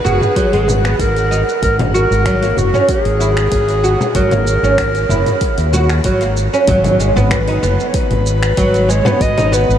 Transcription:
0.00 6.69 F#5 medium
0.05 0.18 F#1 loud
0.05 0.21 F#4 medium
0.05 0.73 G#4 loud
0.05 mid tom medium
0.05 shaker medium
0.22 mid tom medium
0.22 shaker soft
0.36 0.52 F#3 medium
0.36 kick medium
0.36 open hi-hat medium
0.36 shaker soft
0.53 0.94 G#1 medium
0.53 0.67 G#3 medium
0.53 open hi-hat soft
0.68 frame drum medium
0.68 shaker medium
0.85 0.99 B3 medium
0.85 finger snap medium
0.85 shaker soft
0.99 1.42 G#1 medium
0.99 1.59 A#4 loud
0.99 kick medium
0.99 open hi-hat medium
0.99 shaker soft
1.17 open hi-hat soft
1.17 shaker soft
1.31 1.41 D#4 medium
1.31 shaker medium
1.49 shaker soft
1.63 2.05 G#1 loud
1.63 1.77 A#4 medium
1.63 kick loud
1.63 open hi-hat medium
1.63 shaker soft
1.79 mid tom medium
1.79 open hi-hat soft
1.79 frame drum medium
1.94 2.10 F#4 medium
1.94 2.59 A#4 loud
1.94 shaker medium
2.11 2.52 G#1 medium
2.11 shaker soft
2.26 2.42 F#3 medium
2.26 finger snap medium
2.26 kick loud
2.26 open hi-hat medium
2.26 shaker soft
2.42 2.57 A#3 medium
2.42 open hi-hat soft
2.42 shaker soft
2.57 2.70 F#1 medium
2.57 2.91 F#4 medium
2.57 mid tom medium
2.57 shaker medium
2.74 2.88 C#4 medium
2.74 mid tom medium
2.74 shaker soft
2.89 4.15 G#4 loud
2.89 kick medium
2.89 open hi-hat medium
2.89 shaker soft
3.05 3.47 G#1 medium
3.05 open hi-hat soft
3.20 3.30 E4 medium
3.20 shaker medium
3.37 finger snap medium
3.37 shaker soft
3.52 3.94 G#1 medium
3.52 kick medium
3.52 open hi-hat medium
3.52 shaker soft
3.69 open hi-hat soft
3.69 shaker soft
3.84 4.00 F#4 medium
3.84 shaker medium
4.01 frame drum medium
4.01 shaker soft
4.15 4.58 G#1 loud
4.15 4.31 F#3 medium
4.15 6.01 A#4 loud
4.15 kick medium
4.15 open hi-hat medium
4.15 shaker soft
4.31 4.46 A#3 medium
4.31 mid tom medium
4.31 open hi-hat soft
4.31 frame drum medium
4.31 shaker soft
4.47 shaker medium
4.63 5.04 G#1 medium
4.63 4.78 C#4 medium
4.63 shaker soft
4.78 finger snap medium
4.78 kick medium
4.78 open hi-hat medium
4.78 shaker soft
4.95 open hi-hat soft
4.95 shaker soft
5.09 5.23 F#1 loud
5.09 5.20 E4 medium
5.09 mid tom medium
5.09 shaker medium
5.26 mid tom medium
5.26 open hi-hat soft
5.26 shaker soft
5.41 kick loud
5.41 open hi-hat medium
5.41 shaker soft
5.58 5.99 D#2 medium
5.58 open hi-hat soft
5.58 shaker soft
5.73 5.89 F#4 medium
5.73 frame drum medium
5.73 shaker medium
5.89 finger snap medium
5.89 open hi-hat soft
5.89 shaker soft
6.04 6.47 G#1 medium
6.04 6.21 F#3 medium
6.04 kick medium
6.04 open hi-hat medium
6.04 shaker soft
6.21 6.36 A#3 medium
6.21 open hi-hat soft
6.21 shaker soft
6.37 shaker medium
6.54 6.67 C#4 medium
6.54 shaker soft
6.67 7.10 G#1 medium
6.67 6.98 F#3 loud
6.67 kick loud
6.67 open hi-hat medium
6.67 impact medium
6.67 shaker soft
6.84 open hi-hat soft
6.84 frame drum medium
6.84 shaker soft
7.00 7.16 G#3 medium
7.00 shaker medium
7.16 7.57 G#1 medium
7.16 7.30 B3 loud
7.16 mid tom medium
7.16 shaker soft
7.31 7.84 B4 medium
7.31 finger snap medium
7.31 kick loud
7.31 open hi-hat medium
7.31 shaker soft
7.48 7.62 D#4 medium
7.48 open hi-hat soft
7.63 7.76 F#1 loud
7.63 8.24 B3 medium
7.63 shaker medium
7.80 shaker soft
7.88 7.97 C#5 medium
7.94 8.92 B4 medium
7.94 kick loud
7.94 open hi-hat medium
7.94 shaker soft
8.11 8.52 G#1 medium
8.11 mid tom medium
8.11 open hi-hat soft
8.26 shaker medium
8.43 finger snap medium
8.43 shaker soft
8.57 9.00 G#1 medium
8.57 8.88 F#3 loud
8.57 kick loud
8.57 open hi-hat medium
8.57 shaker soft
8.74 open hi-hat soft
8.74 shaker soft
8.89 9.05 G#3 medium
8.89 9.23 C#5 loud
8.89 shaker medium
9.05 9.20 B3 loud
9.05 mid tom medium
9.05 frame drum medium
9.05 shaker soft
9.21 9.63 G#1 medium
9.21 9.55 D#5 loud
9.21 kick loud
9.21 open hi-hat medium
9.21 shaker soft
9.37 9.51 D#4 medium
9.37 open hi-hat soft
9.37 frame drum medium
9.37 shaker soft
9.52 9.78 B3 medium
9.52 9.78 B4 loud
9.52 shaker medium
9.69 9.78 G#1 loud
9.69 shaker soft

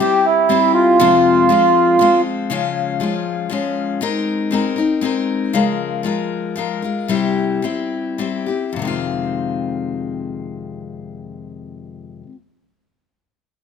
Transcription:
0.00 0.48 G3 medium
0.00 0.48 C4 medium
0.00 0.50 E4 medium
0.00 0.26 G4 loud
0.00 0.51 G4 medium
0.26 0.72 E4 loud
0.49 1.00 G3 medium
0.49 1.00 C4 medium
0.49 1.01 E4 medium
0.49 1.01 G4 medium
0.74 2.21 F4 loud
1.00 1.50 F2 medium
1.00 1.50 C3 loud
1.00 1.48 F3 medium
1.00 1.49 G#3 medium
1.00 1.50 C4 loud
1.00 1.51 F4 loud
1.49 1.98 F3 medium
1.49 2.00 G#3 medium
1.49 2.00 C4 medium
1.49 2.01 F4 medium
1.99 2.49 F3 medium
1.99 2.50 G#3 medium
1.99 2.51 C4 medium
1.99 2.51 F4 medium
2.50 3.00 C#3 medium
2.50 2.99 F3 medium
2.50 3.00 G#3 medium
2.50 3.01 C#4 medium
2.50 3.02 F4 medium
3.00 3.48 F3 medium
3.00 3.51 G#3 medium
3.00 3.51 C#4 medium
3.00 3.52 F4 medium
3.50 4.00 F3 medium
3.50 4.01 G#3 medium
3.50 4.02 C#4 medium
3.50 4.02 F4 medium
4.01 4.50 G#3 medium
4.01 4.51 C4 medium
4.01 4.52 D#4 medium
4.01 4.53 A#4 medium
4.51 4.77 G#3 medium
4.51 4.77 C4 medium
4.51 4.77 D#4 medium
4.51 4.75 A#4 medium
4.76 5.01 C4 soft
4.76 5.02 D#4 soft
4.76 5.02 A#4 soft
5.01 5.52 G#3 medium
5.01 5.53 C4 medium
5.01 5.53 D#4 medium
5.01 5.54 A#4 medium
5.53 6.04 C#3 medium
5.53 6.02 F3 medium
5.53 6.03 G#3 medium
5.53 6.04 F4 medium
5.53 6.05 A#4 medium
6.03 6.54 F3 soft
6.03 6.55 G#3 medium
6.03 6.56 F4 medium
6.03 6.56 A#4 medium
6.56 6.81 F3 medium
6.56 6.82 G#3 medium
6.56 6.82 F4 medium
6.56 6.81 A#4 medium
6.82 7.09 G#3 soft
6.82 7.09 F4 soft
6.82 7.08 A#4 soft
7.08 7.62 C3 medium
7.08 7.61 G3 medium
7.08 7.63 C4 medium
7.08 7.63 E4 medium
7.08 7.63 G4 medium
7.62 8.17 G3 medium
7.62 8.18 C4 medium
7.62 8.19 E4 medium
7.62 8.20 G4 medium
8.18 8.47 G3 soft
8.18 8.47 C4 medium
8.18 8.47 E4 medium
8.18 8.45 G4 medium
8.46 8.77 C4 soft
8.46 8.77 E4 soft
8.46 8.76 G4 soft
8.73 12.23 F2 medium
8.73 12.26 C3 medium
8.79 12.29 D#3 medium
8.79 12.32 G#3 medium
8.85 12.35 C4 medium
8.85 12.37 F4 medium

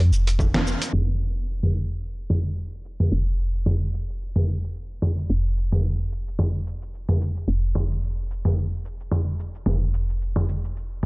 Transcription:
0.00 0.13 F2 medium
0.00 closed hi-hat soft
0.11 0.75 F1 loud
0.11 shaker medium
0.27 closed hi-hat medium
0.27 shaker soft
0.39 kick loud
0.39 mid tom medium
0.39 shaker soft
0.54 snare medium
0.54 closed hi-hat soft
0.67 shaker medium
0.82 closed hi-hat medium
0.82 shaker soft
0.93 3.09 F1 medium
0.93 mid tom medium
1.21 shaker medium
1.37 shaker soft
1.48 shaker soft
1.63 mid tom medium
1.76 shaker medium
1.91 shaker soft
2.03 shaker soft
2.30 mid tom medium
2.30 shaker medium
2.46 shaker soft
2.58 shaker soft
2.85 shaker medium
3.00 mid tom medium
3.00 shaker soft
3.12 5.28 F1 medium
3.12 shaker soft
3.39 shaker medium
3.55 shaker soft
3.66 mid tom medium
3.66 shaker soft
3.94 shaker medium
4.09 shaker soft
4.21 shaker soft
4.36 mid tom medium
4.48 shaker medium
4.64 shaker soft
4.76 shaker soft
5.02 mid tom medium
5.02 shaker medium
5.18 shaker soft
5.30 7.46 F1 medium
5.30 shaker soft
5.57 shaker medium
5.72 mid tom medium
5.72 shaker soft
5.85 shaker soft
6.12 shaker medium
6.27 shaker soft
6.39 mid tom medium
6.39 shaker soft
6.67 shaker medium
6.82 shaker soft
6.94 shaker soft
7.09 mid tom medium
7.21 shaker medium
7.37 shaker soft
7.48 9.64 F1 medium
7.48 shaker soft
7.75 mid tom medium
7.75 shaker medium
7.91 shaker soft
8.03 shaker soft
8.31 shaker medium
8.45 mid tom medium
8.45 shaker soft
8.58 shaker soft
8.85 shaker medium
9.00 shaker soft
9.12 mid tom medium
9.12 shaker soft
9.39 shaker medium
9.55 shaker soft
9.66 11.06 F1 medium
9.66 mid tom medium
9.66 shaker soft
9.94 shaker medium
10.09 shaker soft
10.21 shaker soft
10.36 mid tom medium
10.49 shaker medium
10.64 shaker soft
10.76 shaker soft

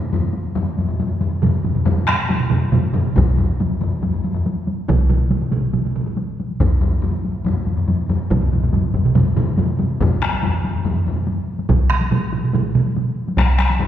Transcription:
0.02 taiko high soft
0.13 taiko low-mid loud
0.13 taiko high medium
0.24 taiko high soft
0.33 taiko high medium
0.45 taiko high soft
0.56 taiko low-mid loud
0.56 taiko high medium
0.67 taiko high soft
0.78 taiko low-mid medium
0.78 taiko high medium
0.89 taiko low-mid medium
0.99 taiko low-mid medium
0.99 taiko high medium
1.09 taiko high soft
1.21 taiko low-mid medium
1.21 taiko high medium
1.32 taiko high soft
1.42 taiko low-mid loud
1.42 taiko mid loud
1.42 taiko high medium
1.64 taiko low-mid medium
1.64 taiko mid medium
1.64 taiko high medium
1.75 taiko low-mid medium
1.75 taiko mid medium
1.75 taiko high soft
1.85 taiko low-mid loud
1.85 taiko mid loud
1.85 taiko high medium
1.98 taiko high soft
2.07 taiko rim medium
2.07 taiko high medium
2.19 taiko high soft
2.29 taiko low-mid medium
2.29 taiko mid medium
2.29 taiko high medium
2.40 taiko low-mid medium
2.40 taiko mid medium
2.51 taiko low-mid loud
2.51 taiko mid loud
2.51 taiko high medium
2.62 taiko high soft
2.72 taiko low-mid loud
2.72 taiko mid medium
2.72 taiko high medium
2.84 taiko high soft
2.93 taiko low-mid medium
2.93 taiko mid loud
2.93 taiko high medium
3.06 taiko high soft
3.16 taiko loud
3.16 taiko low-mid loud
3.16 taiko high medium
3.28 taiko high soft
3.37 taiko low-mid loud
3.37 taiko high medium
3.50 taiko high soft
3.60 taiko low-mid medium
3.60 taiko high medium
3.70 taiko low-mid medium
3.70 taiko high soft
3.81 taiko low-mid medium
3.81 taiko high medium
3.92 taiko high soft
4.02 taiko low-mid medium
4.02 taiko high medium
4.13 taiko low-mid medium
4.13 taiko high soft
4.24 taiko low-mid medium
4.24 taiko high medium
4.34 taiko low-mid medium
4.34 taiko high soft
4.46 taiko high medium
4.57 taiko high soft
4.67 taiko high medium
4.77 taiko high soft
4.88 taiko loud
4.88 taiko mid loud
4.88 taiko high medium
4.99 taiko high soft
5.09 taiko mid loud
5.09 taiko high soft
5.20 taiko high soft
5.31 taiko mid medium
5.31 taiko high medium
5.41 taiko mid medium
5.41 taiko high soft
5.51 taiko mid loud
5.51 taiko high medium
5.62 taiko high soft
5.73 taiko mid medium
5.73 taiko high medium
5.84 taiko mid medium
5.84 taiko high soft
5.95 taiko mid medium
5.95 taiko high soft
6.06 taiko mid medium
6.06 taiko high soft
6.17 taiko high medium
6.28 taiko high soft
6.40 taiko high medium
6.51 taiko high soft
6.60 taiko medium
6.60 taiko low-mid loud
6.60 taiko high medium
6.71 taiko high soft
6.81 taiko low-mid loud
6.81 taiko high medium
6.93 taiko high soft
7.02 taiko low-mid loud
7.02 taiko high medium
7.14 taiko high soft
7.25 taiko high medium
7.36 taiko high soft
7.45 taiko low-mid loud
7.45 taiko high medium
7.56 taiko high soft
7.66 taiko low-mid medium
7.66 taiko high medium
7.77 taiko low-mid medium
7.77 taiko high soft
7.88 taiko low-mid medium
7.88 taiko high medium
8.00 taiko high soft
8.09 taiko low-mid medium
8.09 taiko high medium
8.21 taiko high soft
8.30 taiko medium
8.30 taiko low-mid medium
8.30 taiko mid medium
8.30 taiko high medium
8.42 taiko low-mid medium
8.42 taiko mid medium
8.42 taiko high soft
8.52 taiko low-mid medium
8.52 taiko mid medium
8.52 taiko high medium
8.63 taiko low-mid medium
8.63 taiko mid medium
8.73 taiko low-mid medium
8.73 taiko mid medium
8.73 taiko high medium
8.84 taiko high medium
8.94 taiko medium
8.94 taiko low-mid medium
8.94 taiko mid medium
8.94 taiko high medium
9.05 taiko low-mid medium
9.05 taiko mid medium
9.05 taiko high soft
9.15 taiko low-mid loud
9.15 taiko mid loud
9.15 taiko high medium
9.25 taiko high soft
9.36 taiko low-mid loud
9.36 taiko mid loud
9.36 taiko high medium
9.47 taiko high soft
9.58 taiko low-mid medium
9.58 taiko mid medium
9.58 taiko high medium
9.69 taiko high soft
9.79 taiko low-mid medium
9.79 taiko mid medium
9.79 taiko high medium
9.90 taiko high soft
10.01 taiko loud
10.01 taiko low-mid loud
10.01 taiko high medium
10.22 taiko rim medium
10.22 taiko high medium
10.33 taiko high medium
10.43 taiko low-mid loud
10.43 taiko high medium
10.64 taiko low-mid medium
10.64 taiko high medium
10.75 taiko low-mid medium
10.85 taiko low-mid loud
10.85 taiko high medium
11.06 taiko low-mid medium
11.06 taiko high medium
11.16 taiko high medium
11.27 taiko high medium
11.59 taiko high medium
11.69 taiko medium
11.69 taiko mid loud
11.69 taiko high medium
11.90 taiko rim medium
11.90 taiko high medium
12.01 taiko high medium
12.11 taiko mid loud
12.11 taiko high medium
12.33 taiko mid medium
12.33 taiko high medium
12.44 taiko mid medium
12.53 taiko mid loud
12.53 taiko high medium
12.75 taiko mid loud
12.86 taiko high medium
12.97 taiko high medium
13.28 taiko high medium
13.37 taiko rim medium
13.37 taiko loud
13.37 taiko high medium
13.59 taiko rim medium
13.59 taiko high medium
13.70 taiko high medium
13.79 taiko low-mid medium
13.79 taiko high medium

